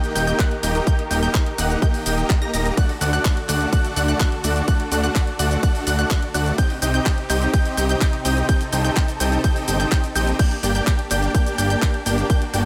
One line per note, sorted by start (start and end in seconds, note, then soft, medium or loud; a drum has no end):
0.00 2.74 D#3 medium
0.00 0.13 A#3 medium
0.00 0.13 D#4 medium
0.00 2.74 D#4 medium
0.00 0.13 G4 medium
0.00 2.74 G4 medium
0.00 2.74 A#4 medium
0.00 0.13 D#5 medium
0.00 0.13 G5 loud
0.00 0.13 G6 loud
0.00 closed hi-hat soft
0.04 cabasa soft
0.15 0.33 D#1 medium
0.15 0.26 A#3 loud
0.15 0.26 D#4 medium
0.15 0.26 G4 medium
0.15 0.26 D#5 medium
0.15 0.26 G5 loud
0.15 0.26 G6 loud
0.15 open hi-hat loud
0.15 cabasa medium
0.27 0.38 A#3 medium
0.27 0.37 D#4 medium
0.27 0.37 G4 medium
0.27 0.37 D#5 medium
0.27 0.38 G5 medium
0.27 0.38 G6 medium
0.27 closed hi-hat soft
0.27 cabasa soft
0.39 0.53 A#3 medium
0.39 0.53 D#4 medium
0.39 0.53 G4 medium
0.39 0.53 D#5 medium
0.39 0.53 F#5 medium
0.39 0.53 F#6 medium
0.39 kick loud
0.39 clap loud
0.39 closed hi-hat medium
0.39 cabasa soft
0.51 closed hi-hat soft
0.63 0.81 D#1 medium
0.63 0.84 A#3 medium
0.63 0.84 D#4 medium
0.63 0.84 G4 medium
0.63 0.84 D#5 medium
0.63 0.84 G5 loud
0.63 0.84 G6 loud
0.63 open hi-hat loud
0.63 cabasa medium
0.75 closed hi-hat soft
0.75 cabasa soft
0.87 1.00 A#3 medium
0.87 1.00 D#4 medium
0.87 1.00 G4 medium
0.87 1.00 D#5 medium
0.87 1.00 G5 loud
0.87 1.00 G6 loud
0.87 kick loud
0.87 closed hi-hat medium
0.87 cabasa soft
0.99 closed hi-hat soft
1.11 1.28 D#1 loud
1.11 1.20 A#3 medium
1.11 1.20 D#4 medium
1.11 1.20 G4 medium
1.11 1.20 D#5 medium
1.11 1.20 G5 medium
1.11 1.20 G6 medium
1.11 open hi-hat loud
1.11 cabasa medium
1.23 1.33 A#3 medium
1.23 1.33 D#4 medium
1.23 1.33 G4 medium
1.23 1.33 D#5 medium
1.23 1.33 G5 medium
1.23 1.33 G6 medium
1.23 closed hi-hat soft
1.23 cabasa soft
1.34 1.48 A#3 medium
1.34 1.48 D#4 medium
1.34 1.48 G4 medium
1.34 1.48 D#5 medium
1.34 1.48 G5 medium
1.34 1.48 G6 medium
1.34 kick loud
1.34 clap loud
1.34 closed hi-hat medium
1.34 cabasa soft
1.46 closed hi-hat soft
1.58 1.76 D#1 medium
1.58 1.79 A#3 medium
1.58 1.79 D#4 medium
1.58 1.79 G4 medium
1.58 1.79 D#5 medium
1.58 1.79 F#5 loud
1.58 1.79 F#6 loud
1.58 open hi-hat loud
1.58 cabasa medium
1.70 closed hi-hat soft
1.70 cabasa soft
1.82 2.03 A#3 medium
1.82 2.03 D#4 medium
1.82 2.03 G4 medium
1.82 2.03 D#5 medium
1.82 2.03 G5 loud
1.82 2.03 G6 loud
1.82 kick loud
1.82 closed hi-hat medium
1.82 cabasa soft
1.94 open hi-hat medium
1.94 cabasa soft
2.06 2.24 D#1 medium
2.06 2.39 A#3 medium
2.06 2.39 D#4 medium
2.06 2.39 G4 medium
2.06 2.39 D#5 medium
2.06 2.39 G5 medium
2.06 2.39 G6 medium
2.06 open hi-hat loud
2.06 cabasa medium
2.18 closed hi-hat soft
2.18 cabasa soft
2.30 kick loud
2.30 clap loud
2.30 closed hi-hat medium
2.30 cabasa soft
2.42 2.51 A#3 loud
2.42 2.51 D#4 medium
2.42 2.51 G4 medium
2.42 2.51 D#5 medium
2.42 2.51 A#5 loud
2.42 2.51 A#6 loud
2.42 closed hi-hat soft
2.53 2.71 D#1 medium
2.53 2.75 A#3 medium
2.53 2.75 D#4 medium
2.53 2.75 G4 medium
2.53 2.75 D#5 medium
2.53 2.75 A#5 loud
2.53 2.75 A#6 loud
2.53 open hi-hat loud
2.53 cabasa medium
2.66 closed hi-hat soft
2.66 cabasa soft
2.77 6.55 D3 medium
2.77 2.91 A3 medium
2.77 2.91 D4 medium
2.77 6.55 D4 medium
2.77 2.91 F#4 medium
2.77 6.55 F#4 medium
2.77 6.55 A4 medium
2.77 2.91 D5 medium
2.77 2.91 F#5 loud
2.77 2.91 F#6 loud
2.77 kick loud
2.77 closed hi-hat medium
2.77 ride medium
2.77 cabasa soft
2.89 open hi-hat medium
3.01 3.19 D2 loud
3.01 3.10 A3 medium
3.01 3.10 D4 medium
3.01 3.10 F#4 medium
3.01 3.10 D5 medium
3.01 3.10 F#5 medium
3.01 3.10 F#6 medium
3.01 open hi-hat loud
3.01 cabasa medium
3.13 3.23 A3 medium
3.13 3.23 D4 medium
3.13 3.23 F#4 medium
3.13 3.23 D5 medium
3.13 3.23 F#5 medium
3.13 3.23 F#6 medium
3.13 closed hi-hat soft
3.13 cabasa soft
3.25 3.39 A3 medium
3.25 3.39 D4 medium
3.25 3.39 F#4 medium
3.25 3.38 D5 medium
3.25 3.39 F#5 medium
3.25 3.38 F#6 medium
3.25 kick loud
3.25 clap loud
3.25 closed hi-hat medium
3.25 ride medium
3.25 cabasa soft
3.37 closed hi-hat soft
3.49 3.66 D2 medium
3.49 3.70 A3 medium
3.49 3.70 D4 medium
3.49 3.70 F#4 medium
3.49 3.70 D5 medium
3.49 3.70 F#5 loud
3.49 3.70 F#6 loud
3.49 clap soft
3.49 open hi-hat loud
3.49 cabasa medium
3.61 closed hi-hat soft
3.61 cabasa soft
3.73 3.94 A3 medium
3.73 3.94 D4 medium
3.73 3.94 F#4 medium
3.73 3.94 D5 medium
3.73 3.94 F#5 loud
3.73 3.94 F#6 loud
3.73 kick loud
3.73 closed hi-hat medium
3.73 ride medium
3.73 cabasa soft
3.85 closed hi-hat soft
3.85 cabasa soft
3.96 4.14 D2 medium
3.96 4.07 A3 loud
3.96 4.07 D4 medium
3.96 4.07 F#4 medium
3.96 4.07 D5 medium
3.96 4.07 F#5 loud
3.96 4.07 F#6 loud
3.96 open hi-hat loud
3.96 cabasa medium
4.08 4.18 A3 medium
4.08 4.18 D4 medium
4.08 4.18 F#4 medium
4.08 4.18 D5 medium
4.08 4.18 F#5 medium
4.08 4.18 F#6 medium
4.08 closed hi-hat soft
4.08 cabasa soft
4.20 4.34 A3 medium
4.20 4.34 D4 medium
4.20 4.34 F#4 medium
4.20 4.34 D5 medium
4.20 4.34 F#5 medium
4.20 4.34 F#6 loud
4.20 kick loud
4.20 clap loud
4.20 closed hi-hat medium
4.20 ride medium
4.20 cabasa soft
4.32 closed hi-hat soft
4.44 4.62 D2 medium
4.44 4.65 A3 medium
4.44 4.65 D4 medium
4.44 4.65 F#4 medium
4.44 4.65 D5 medium
4.44 4.65 F#5 loud
4.44 4.65 F#6 loud
4.44 open hi-hat loud
4.44 cabasa medium
4.56 closed hi-hat soft
4.56 cabasa soft
4.68 4.81 A3 medium
4.68 4.81 D4 medium
4.68 4.81 F#4 medium
4.68 4.81 D5 medium
4.68 4.81 F#5 loud
4.68 4.81 F#6 loud
4.68 kick loud
4.68 closed hi-hat medium
4.68 ride medium
4.68 cabasa soft
4.80 closed hi-hat soft
4.92 5.09 D2 loud
4.92 5.01 A3 medium
4.92 5.01 D4 medium
4.92 5.01 F#4 medium
4.92 5.01 D5 medium
4.92 5.01 F#5 medium
4.92 5.01 F#6 medium
4.92 open hi-hat loud
4.92 cabasa medium
5.04 5.14 A3 medium
5.04 5.14 D4 medium
5.04 5.14 F#4 medium
5.04 5.14 D5 medium
5.04 5.14 F#5 medium
5.04 5.14 F#6 medium
5.04 closed hi-hat soft
5.04 cabasa soft
5.15 5.29 A3 medium
5.15 5.29 D4 medium
5.15 5.29 F#4 medium
5.15 5.29 D5 medium
5.15 5.29 F#5 medium
5.15 5.29 F#6 medium
5.15 kick loud
5.15 clap loud
5.15 closed hi-hat medium
5.15 ride medium
5.15 cabasa soft
5.27 closed hi-hat soft
5.39 5.57 D2 medium
5.39 5.60 A3 medium
5.39 5.60 D4 medium
5.39 5.60 F#4 medium
5.39 5.60 D5 medium
5.39 5.60 F#5 loud
5.39 5.60 F#6 loud
5.39 open hi-hat loud
5.39 cabasa medium
5.51 closed hi-hat soft
5.51 cabasa soft
5.63 5.84 A3 medium
5.63 5.84 D4 medium
5.63 5.84 F#4 medium
5.63 5.84 D5 medium
5.63 5.84 F#5 medium
5.63 5.84 F#6 loud
5.63 kick loud
5.63 closed hi-hat medium
5.63 ride medium
5.63 cabasa soft
5.75 open hi-hat medium
5.75 cabasa soft
5.87 6.04 D2 medium
5.87 5.97 A3 loud
5.87 5.97 D4 medium
5.87 5.97 F#4 medium
5.87 5.97 D5 medium
5.87 5.97 F#5 loud
5.87 5.97 F#6 loud
5.87 open hi-hat loud
5.87 cabasa medium
5.99 6.09 A3 medium
5.99 6.09 D4 medium
5.99 6.09 F#4 medium
5.99 6.09 D5 medium
5.99 6.09 F#5 medium
5.99 6.09 F#6 medium
5.99 closed hi-hat soft
5.99 cabasa soft
6.11 6.24 A3 medium
6.11 6.24 D4 medium
6.11 6.24 F#4 medium
6.11 6.24 D5 medium
6.11 6.24 F#5 medium
6.11 6.24 F#6 medium
6.11 kick loud
6.11 clap loud
6.11 closed hi-hat medium
6.11 ride medium
6.11 cabasa soft
6.22 closed hi-hat soft
6.34 6.52 D2 medium
6.34 6.55 A3 medium
6.34 6.55 D4 medium
6.34 6.55 F#4 medium
6.34 6.55 D5 medium
6.34 6.55 F#5 loud
6.34 6.55 F#6 loud
6.34 open hi-hat loud
6.34 cabasa medium
6.46 closed hi-hat soft
6.46 cabasa soft
6.58 10.36 C3 medium
6.58 6.72 C4 medium
6.58 10.36 C4 medium
6.58 6.72 D#4 medium
6.58 10.36 D#4 medium
6.58 6.72 G4 medium
6.58 8.47 G4 medium
6.58 6.72 D#5 medium
6.58 6.72 G5 loud
6.58 6.72 G6 loud
6.58 kick loud
6.58 closed hi-hat medium
6.58 ride medium
6.58 cabasa soft
6.70 open hi-hat medium
6.82 7.00 C2 loud
6.82 6.91 C4 medium
6.82 6.91 D#4 medium
6.82 6.91 G4 medium
6.82 6.91 D#5 medium
6.82 6.91 G5 medium
6.82 6.91 G6 medium
6.82 open hi-hat loud
6.82 cabasa medium
6.94 7.04 C4 medium
6.94 7.04 D#4 medium
6.94 7.04 G4 medium
6.94 7.04 D#5 medium
6.94 7.04 G5 medium
6.94 7.04 G6 medium
6.94 closed hi-hat soft
6.94 cabasa soft
7.06 7.19 C4 medium
7.06 7.19 D#4 medium
7.06 7.19 G4 medium
7.06 7.19 D#5 medium
7.06 7.19 G5 medium
7.06 7.19 G6 medium
7.06 kick loud
7.06 clap loud
7.06 closed hi-hat medium
7.06 ride medium
7.06 cabasa soft
7.18 closed hi-hat soft
7.30 7.47 C2 medium
7.30 7.51 C4 medium
7.30 7.51 D#4 medium
7.30 7.51 G4 medium
7.30 7.51 D#5 medium
7.30 7.51 G5 loud
7.30 7.51 G6 loud
7.30 clap soft
7.30 open hi-hat loud
7.30 cabasa medium
7.42 closed hi-hat soft
7.42 cabasa soft
7.54 7.75 C4 medium
7.54 7.75 D#4 medium
7.54 7.75 G4 medium
7.54 7.75 D#5 medium
7.54 7.75 G5 loud
7.54 7.75 G6 loud
7.54 kick loud
7.54 closed hi-hat medium
7.54 ride medium
7.54 cabasa medium
7.65 closed hi-hat soft
7.65 cabasa soft
7.77 7.95 C2 medium
7.77 7.88 C4 loud
7.77 7.88 D#4 medium
7.77 7.88 G4 medium
7.77 7.88 D#5 medium
7.77 7.88 G5 loud
7.77 7.88 G6 loud
7.77 open hi-hat loud
7.77 cabasa medium
7.89 7.99 C4 medium
7.89 7.99 D#4 medium
7.89 7.99 G4 medium
7.89 7.99 D#5 medium
7.89 7.99 G5 medium
7.89 7.99 G6 medium
7.89 closed hi-hat soft
7.89 cabasa soft
8.01 8.15 C4 medium
8.01 8.15 D#4 medium
8.01 8.15 G4 medium
8.01 8.15 D#5 medium
8.01 8.15 G5 medium
8.01 8.15 G6 loud
8.01 kick loud
8.01 clap loud
8.01 closed hi-hat medium
8.01 ride medium
8.01 cabasa soft
8.13 closed hi-hat soft
8.25 8.43 C2 medium
8.25 8.46 C4 medium
8.25 8.46 D#4 medium
8.25 8.46 G4 medium
8.25 8.46 D#5 medium
8.25 8.46 G5 loud
8.25 8.46 G6 loud
8.25 open hi-hat loud
8.25 cabasa medium
8.37 closed hi-hat soft
8.37 cabasa soft
8.49 8.62 C4 medium
8.49 8.62 D#4 medium
8.49 8.62 G4 medium
8.49 10.37 A4 medium
8.49 8.62 D#5 medium
8.49 8.62 G5 loud
8.49 8.62 G6 loud
8.49 kick loud
8.49 closed hi-hat medium
8.49 ride medium
8.49 cabasa soft
8.61 closed hi-hat soft
8.61 cabasa soft
8.73 8.90 C2 loud
8.73 8.82 C4 medium
8.73 8.82 D#4 medium
8.73 8.82 G4 medium
8.73 8.82 D#5 medium
8.73 8.82 G5 medium
8.73 8.82 G6 medium
8.73 open hi-hat loud
8.73 cabasa medium
8.85 8.95 C4 medium
8.85 8.95 D#4 medium
8.85 8.95 G4 medium
8.85 8.95 D#5 medium
8.85 8.95 G5 medium
8.85 8.95 G6 medium
8.85 closed hi-hat soft
8.85 cabasa soft
8.96 9.10 C4 medium
8.96 9.10 D#4 medium
8.96 9.10 G4 medium
8.96 9.10 D#5 medium
8.96 9.10 G5 medium
8.96 9.10 G6 medium
8.96 kick loud
8.96 clap loud
8.96 closed hi-hat medium
8.96 ride medium
8.96 cabasa soft
9.08 closed hi-hat soft
9.08 cabasa soft
9.20 9.38 C2 medium
9.20 9.41 C4 medium
9.20 9.41 D#4 medium
9.20 9.41 G4 medium
9.20 9.41 D#5 medium
9.20 9.41 G5 medium
9.20 9.41 G6 loud
9.20 open hi-hat loud
9.20 cabasa medium
9.32 closed hi-hat soft
9.32 cabasa soft
9.44 9.65 C4 medium
9.44 9.65 D#4 medium
9.44 9.65 G4 medium
9.44 9.65 D#5 medium
9.44 9.65 G5 loud
9.44 9.65 G6 loud
9.44 kick loud
9.44 closed hi-hat medium
9.44 ride medium
9.44 cabasa soft
9.56 open hi-hat medium
9.56 cabasa soft
9.68 9.85 G1 loud
9.68 9.78 C4 loud
9.68 9.78 D#4 medium
9.68 9.78 G4 medium
9.68 9.78 D#5 medium
9.68 9.78 G5 loud
9.68 9.78 G6 loud
9.68 open hi-hat loud
9.68 cabasa medium
9.80 9.90 C4 medium
9.80 9.90 D#4 medium
9.80 9.90 G4 medium
9.80 9.90 D#5 medium
9.80 9.90 G5 medium
9.80 9.90 G6 medium
9.80 clap soft
9.80 closed hi-hat soft
9.80 cabasa soft
9.92 10.05 C4 medium
9.92 10.05 D#4 medium
9.92 10.05 G4 medium
9.92 10.05 D#5 medium
9.92 10.05 G5 medium
9.92 10.05 G6 medium
9.92 kick loud
9.92 clap loud
9.92 closed hi-hat medium
9.92 ride medium
9.92 cabasa soft
10.04 closed hi-hat soft
10.04 cabasa soft
10.15 10.33 A#1 loud
10.15 10.36 C4 medium
10.15 10.36 D#4 medium
10.15 10.36 G4 medium
10.15 10.36 D#5 medium
10.15 10.36 G5 loud
10.15 10.36 G6 loud
10.15 open hi-hat loud
10.15 cabasa medium
10.27 closed hi-hat soft
10.27 cabasa soft
10.39 12.65 A#3 medium
10.39 10.53 A#3 medium
10.39 12.65 D4 medium
10.39 10.53 D4 medium
10.39 12.28 G4 medium
10.39 10.53 G4 medium
10.39 10.53 D5 medium
10.39 10.53 G5 loud
10.39 10.53 G6 loud
10.39 kick loud
10.39 closed hi-hat medium
10.39 ride medium
10.39 crash medium
10.39 cabasa soft
10.51 open hi-hat medium
10.63 10.81 G1 loud
10.63 10.72 A#3 medium
10.63 10.72 D4 medium
10.63 10.72 G4 medium
10.63 10.72 D5 medium
10.63 10.72 G5 medium
10.63 10.72 G6 medium
10.63 open hi-hat loud
10.63 cabasa medium
10.75 10.85 A#3 medium
10.75 10.85 D4 medium
10.75 10.85 G4 medium
10.75 10.85 D5 medium
10.75 10.85 G5 medium
10.75 10.85 G6 medium
10.75 closed hi-hat soft
10.75 cabasa soft
10.87 11.00 A#3 medium
10.87 11.00 D4 medium
10.87 11.00 G4 medium
10.87 11.00 D5 medium
10.87 11.00 G5 medium
10.87 11.00 G6 medium
10.87 kick loud
10.87 clap loud
10.87 closed hi-hat medium
10.87 ride medium
10.87 cabasa soft
10.99 closed hi-hat soft
11.11 11.28 G1 medium
11.11 11.32 A#3 medium
11.11 11.32 D4 medium
11.11 11.32 G4 medium
11.11 11.32 D5 medium
11.11 11.32 G5 loud
11.11 11.32 G6 loud
11.11 clap soft
11.11 open hi-hat loud
11.11 cabasa medium
11.23 closed hi-hat soft
11.23 cabasa soft
11.35 11.56 A#3 medium
11.35 11.56 D4 medium
11.35 11.56 G4 medium
11.35 11.56 D5 medium
11.35 11.56 G5 loud
11.35 11.55 G6 loud
11.35 kick loud
11.35 closed hi-hat medium
11.35 ride medium
11.35 cabasa soft
11.46 closed hi-hat soft
11.46 cabasa soft
11.58 11.76 G1 medium
11.58 11.69 A#3 loud
11.58 11.69 D4 medium
11.58 11.69 G4 medium
11.58 11.69 D5 medium
11.58 11.69 G5 loud
11.58 11.68 G6 loud
11.58 open hi-hat loud
11.58 cabasa medium
11.70 11.80 A#3 medium
11.70 11.80 D4 medium
11.70 11.80 G4 medium
11.70 11.80 D5 medium
11.70 11.80 G5 medium
11.70 11.80 G6 medium
11.70 closed hi-hat soft
11.70 cabasa soft
11.82 11.96 A#3 medium
11.82 11.96 D4 medium
11.82 11.96 G4 medium
11.82 11.96 D5 medium
11.82 11.96 G5 medium
11.82 11.96 G6 loud
11.82 kick loud
11.82 clap loud
11.82 closed hi-hat medium
11.82 ride medium
11.82 cabasa soft
11.94 closed hi-hat soft
12.06 12.24 G1 medium
12.06 12.27 A#3 medium
12.06 12.27 D4 medium
12.06 12.27 G4 medium
12.06 12.27 D5 medium
12.06 12.27 G5 loud
12.06 12.27 G6 loud
12.06 open hi-hat loud
12.06 cabasa medium
12.18 closed hi-hat soft
12.18 cabasa soft
12.30 12.43 A#3 medium
12.30 12.43 D4 medium
12.30 12.65 F#4 medium
12.30 12.43 G4 medium
12.30 12.43 D5 medium
12.30 12.43 G5 loud
12.30 12.43 G6 loud
12.30 kick loud
12.30 closed hi-hat medium
12.30 ride medium
12.30 cabasa soft
12.42 closed hi-hat soft
12.54 12.65 G1 loud
12.54 12.63 A#3 medium
12.54 12.63 D4 medium
12.54 12.63 G4 medium
12.54 12.63 D5 medium
12.54 12.63 G5 medium
12.54 12.63 G6 medium
12.54 open hi-hat loud
12.54 cabasa medium